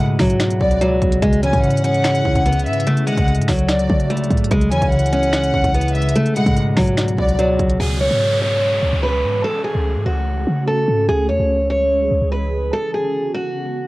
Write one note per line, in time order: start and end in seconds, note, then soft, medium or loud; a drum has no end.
0.00 0.80 C#2 medium
0.00 0.18 G#2 loud
0.00 1.27 B2 medium
0.00 0.18 G#3 medium
0.00 1.21 B3 medium
0.00 1.86 C#4 medium
0.00 1.21 F#4 medium
0.00 1.21 D5 medium
0.00 2.83 E5 medium
0.19 0.59 G#2 loud
0.19 0.78 F#3 medium
0.19 1.27 F#3 medium
0.19 finger snap medium
0.19 kick medium
0.19 snare medium
0.19 open hi-hat medium
0.30 closed hi-hat medium
0.40 finger snap medium
0.40 snare loud
0.40 closed hi-hat medium
0.50 closed hi-hat medium
0.61 1.00 C#2 loud
0.61 3.71 B3 medium
0.61 0.80 D5 medium
0.61 kick loud
0.71 closed hi-hat medium
0.81 1.27 C#2 medium
0.81 1.20 F#3 medium
0.81 closed hi-hat medium
1.02 1.22 C#2 loud
1.02 kick loud
1.02 closed hi-hat medium
1.12 closed hi-hat medium
1.22 1.52 C#2 loud
1.22 1.62 C#3 medium
1.22 1.40 G#3 loud
1.22 2.85 G#3 medium
1.22 2.85 C#4 medium
1.22 2.85 E4 medium
1.22 kick loud
1.22 closed hi-hat medium
1.33 closed hi-hat medium
1.43 1.68 E3 medium
1.43 1.82 C#4 medium
1.43 1.62 G#5 medium
1.43 closed hi-hat medium
1.53 2.22 G#2 loud
1.53 kick loud
1.53 closed hi-hat medium
1.64 2.44 C#3 medium
1.64 2.62 F#5 medium
1.64 closed hi-hat soft
1.70 closed hi-hat medium
1.77 closed hi-hat medium
1.84 2.92 G#3 medium
1.84 2.42 C#4 medium
1.84 closed hi-hat medium
1.94 closed hi-hat medium
2.04 finger snap medium
2.04 snare loud
2.04 closed hi-hat medium
2.15 closed hi-hat medium
2.25 2.35 C#2 loud
2.25 3.13 C#4 medium
2.25 kick loud
2.35 2.68 C#2 loud
2.35 kick medium
2.35 closed hi-hat medium
2.46 2.86 C#3 medium
2.46 2.84 B3 medium
2.46 closed hi-hat medium
2.53 closed hi-hat medium
2.59 closed hi-hat medium
2.66 2.86 G#2 loud
2.66 2.86 E5 medium
2.66 closed hi-hat soft
2.73 closed hi-hat medium
2.80 closed hi-hat medium
2.87 3.12 C#3 loud
2.87 4.49 F#3 medium
2.87 3.04 A3 loud
2.87 4.49 F#4 medium
2.87 4.49 D5 medium
2.87 closed hi-hat medium
2.97 closed hi-hat medium
3.07 4.56 D3 medium
3.07 3.46 G#3 medium
3.07 3.27 F#5 medium
3.07 closed hi-hat medium
3.17 3.40 C#2 loud
3.17 kick loud
3.17 closed hi-hat medium
3.28 closed hi-hat soft
3.35 3.48 G#2 loud
3.35 closed hi-hat medium
3.42 closed hi-hat medium
3.48 3.88 C#2 loud
3.48 4.56 F#3 medium
3.48 4.06 F#3 medium
3.48 finger snap medium
3.48 kick medium
3.48 snare loud
3.48 open hi-hat medium
3.59 closed hi-hat medium
3.68 4.08 D5 medium
3.68 finger snap medium
3.68 snare loud
3.68 closed hi-hat medium
3.79 closed hi-hat medium
3.89 4.29 C#3 loud
3.89 5.19 A3 medium
3.89 kick loud
4.00 closed hi-hat medium
4.10 4.56 C#2 medium
4.10 4.49 A3 medium
4.10 closed hi-hat medium
4.17 closed hi-hat medium
4.24 closed hi-hat medium
4.31 4.50 G#2 loud
4.31 kick loud
4.31 closed hi-hat soft
4.37 closed hi-hat medium
4.44 closed hi-hat medium
4.51 4.73 C#2 loud
4.51 4.91 C#3 medium
4.51 6.14 G#3 medium
4.51 4.69 G#3 loud
4.51 6.14 C#4 medium
4.51 6.14 E4 medium
4.51 kick loud
4.51 closed hi-hat medium
4.61 closed hi-hat medium
4.71 4.81 E2 loud
4.71 4.97 E3 medium
4.71 5.10 C#4 medium
4.71 4.91 G#5 medium
4.71 closed hi-hat medium
4.82 5.51 C#2 loud
4.82 kick loud
4.82 closed hi-hat medium
4.92 5.74 C#3 medium
4.92 5.91 F#5 medium
4.92 closed hi-hat soft
4.99 closed hi-hat medium
5.06 closed hi-hat medium
5.13 6.21 G#3 medium
5.13 5.71 C#4 medium
5.13 closed hi-hat medium
5.23 closed hi-hat medium
5.33 finger snap medium
5.33 snare loud
5.33 closed hi-hat medium
5.44 closed hi-hat medium
5.54 5.64 C#2 loud
5.54 8.43 C#4 medium
5.54 kick loud
5.64 6.13 C#2 loud
5.64 kick loud
5.64 closed hi-hat medium
5.74 6.14 C#3 medium
5.74 6.13 B3 medium
5.74 closed hi-hat medium
5.81 closed hi-hat medium
5.88 closed hi-hat medium
5.95 6.14 E5 medium
5.95 closed hi-hat soft
6.02 closed hi-hat medium
6.09 closed hi-hat medium
6.16 6.41 C#3 loud
6.16 6.33 A3 loud
6.16 7.78 B3 medium
6.16 7.78 F#4 medium
6.16 7.78 D5 medium
6.16 closed hi-hat medium
6.26 closed hi-hat medium
6.36 7.85 B2 medium
6.36 6.75 G#3 medium
6.36 6.56 F#5 medium
6.36 closed hi-hat medium
6.46 6.76 G#2 loud
6.46 kick loud
6.46 closed hi-hat medium
6.57 7.38 C#2 medium
6.57 closed hi-hat medium
6.77 7.17 G#2 loud
6.77 7.35 F#3 medium
6.77 7.85 F#3 medium
6.77 finger snap medium
6.77 kick medium
6.77 snare medium
6.77 open hi-hat medium
6.87 closed hi-hat medium
6.97 finger snap medium
6.97 snare loud
6.97 closed hi-hat medium
7.08 closed hi-hat medium
7.18 7.58 C#2 loud
7.18 10.29 B3 medium
7.18 7.38 D5 medium
7.18 kick loud
7.28 closed hi-hat medium
7.39 7.85 C#2 medium
7.39 7.77 F#3 medium
7.39 closed hi-hat medium
7.59 7.79 C#2 loud
7.59 kick loud
7.59 closed hi-hat medium
7.70 closed hi-hat medium
7.80 8.09 C#2 loud
7.80 9.43 E3 medium
7.80 9.43 G#3 medium
7.80 9.43 C#4 medium
7.80 7.97 G#4 loud
7.80 9.43 G#4 medium
7.80 downlifter medium
8.01 8.39 C#5 medium
8.11 8.80 G#2 loud
8.42 9.00 C#5 medium
8.83 8.92 C#2 loud
8.93 9.25 C#2 loud
9.03 9.42 B4 medium
9.24 9.43 G#2 loud
9.44 11.07 C#3 medium
9.44 11.07 A3 medium
9.44 13.87 C#4 medium
9.44 11.07 F#4 medium
9.44 9.62 A4 loud
9.64 10.03 G#4 medium
9.75 9.97 C#2 loud
9.96 10.05 G#2 loud
10.06 10.45 C#2 loud
10.06 10.64 F#4 medium
10.47 10.86 C#3 loud
10.68 11.06 A4 medium
10.88 11.08 G#2 loud
11.09 11.31 C#2 loud
11.09 12.71 E3 medium
11.09 12.71 G#3 medium
11.09 12.71 G#4 medium
11.09 11.26 G#4 loud
11.29 11.39 E2 loud
11.29 11.68 C#5 medium
11.39 12.08 C#2 loud
11.70 12.28 C#5 medium
12.11 12.21 C#2 loud
12.22 12.71 C#2 loud
12.32 12.70 B4 medium
12.73 13.87 C#3 medium
12.73 13.87 D3 medium
12.73 13.87 B3 medium
12.73 13.87 F#4 medium
12.73 12.90 A4 loud
12.94 13.32 G#4 medium
13.34 13.87 F#4 medium